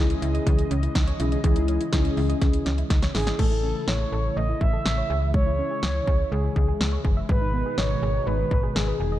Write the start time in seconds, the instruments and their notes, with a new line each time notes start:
Already playing: fm bass C#2, analog synth pad C#3 E3 G#3 D#5, analog polysynth C#4 E4 G#4
0.10 closed hi-hat
0.22 fm bass C#2, synth arpeggio sound E4, closed hi-hat
0.34 synth arpeggio sound D#5, closed hi-hat
0.46 fm bass C#2, synth arpeggio sound E3, kick, closed hi-hat
0.59 closed hi-hat
0.71 fm bass C#2, synth arpeggio sound C#4, closed hi-hat
0.83 synth arpeggio sound E4, closed hi-hat
0.95 fm bass C#2, synth arpeggio sound D#4, kick, snare, closed hi-hat
1.07 synth arpeggio sound C#5, closed hi-hat
1.20 fm bass B1, analog polysynth C#4 E4 G#4, synth arpeggio sound E4, closed hi-hat
1.32 synth arpeggio sound D#5, closed hi-hat
1.44 fm bass C#2, synth arpeggio sound E3, analog polysynth C#4 E4 G#4, kick, closed hi-hat
1.56 synth arpeggio sound D#4, closed hi-hat
1.68 synth arpeggio sound C#4, closed hi-hat
1.81 synth arpeggio sound E4, closed hi-hat
1.93 fm bass C#2, analog polysynth C#4 E4 G#4, synth arpeggio sound D#4, kick, snare, closed hi-hat
2.05 closed hi-hat
2.17 fm bass C#2, synth arpeggio sound E4, open hi-hat
2.29 synth arpeggio sound D#5, closed hi-hat
2.41 fm bass C#2, synth arpeggio sound E3, kick, snare, closed hi-hat
2.53 closed hi-hat
2.66 fm bass C#2, synth arpeggio sound C#4, snare, closed hi-hat
2.78 synth arpeggio sound E4, closed hi-hat
2.90 fm bass C#2, synth arpeggio sound D#4, kick, snare, closed hi-hat
3.02 synth arpeggio sound C#5, snare, closed hi-hat
3.15 fm bass G#1, analog polysynth C#4 E4 G#4, synth arpeggio sound E4, soft synth lead G#4, snare, open hi-hat
3.27 synth arpeggio sound D#5, snare, closed hi-hat
3.39 fm bass A1, analog synth pad C#3 E3 A3 E4, synth arpeggio sound A3, soft synth lead A4, kick, crash
3.51 synth arpeggio sound E4
3.63 synth arpeggio sound C#4
3.76 synth arpeggio sound A4
3.88 fm bass A1, synth arpeggio sound E4, soft synth lead C#5, snare
4.12 fm bass A1, synth arpeggio sound A4
4.37 fm bass A1, synth arpeggio sound A3, soft synth lead D#5
4.49 synth arpeggio sound E4
4.61 fm bass A1, soft synth lead E5, kick
4.73 synth arpeggio sound A4
4.85 fm bass A1, snare
4.98 synth arpeggio sound C#5
5.10 fm bass C#2, analog synth pad G#3, synth arpeggio sound G#4
5.22 synth arpeggio sound E5
5.34 synth arpeggio sound G#3, soft synth lead C#5, kick
5.46 synth arpeggio sound E4
5.59 synth arpeggio sound C#4
5.71 synth arpeggio sound G#4
5.83 fm bass C#2, synth arpeggio sound E4, snare
6.07 fm bass C#2, synth arpeggio sound G#4, kick
6.32 fm bass C#2, synth arpeggio sound G#3, soft synth lead G#4
6.44 synth arpeggio sound E4
6.56 fm bass C#2, kick
6.68 synth arpeggio sound G#4
6.80 fm bass C#2, snare
6.93 synth arpeggio sound C#5
7.05 fm bass F#1, synth arpeggio sound G#4, kick
7.17 synth arpeggio sound E5
7.29 fm bass G#1, analog synth pad B2 D#3 D#4, synth arpeggio sound G#3, soft synth lead B4, kick
7.41 synth arpeggio sound D#4
7.54 synth arpeggio sound B3
7.66 synth arpeggio sound G#4
7.78 fm bass G#1, synth arpeggio sound D#4, soft synth lead C#5, snare
8.02 fm bass G#1, synth arpeggio sound G#4
8.27 fm bass G#1, synth arpeggio sound G#3, soft synth lead B4
8.39 synth arpeggio sound D#4
8.51 fm bass G#1, kick
8.63 synth arpeggio sound G#4
8.75 fm bass G#1, soft synth lead G#4, snare
8.88 synth arpeggio sound B4
9.00 fm bass E1, synth arpeggio sound G#4
9.12 synth arpeggio sound D#5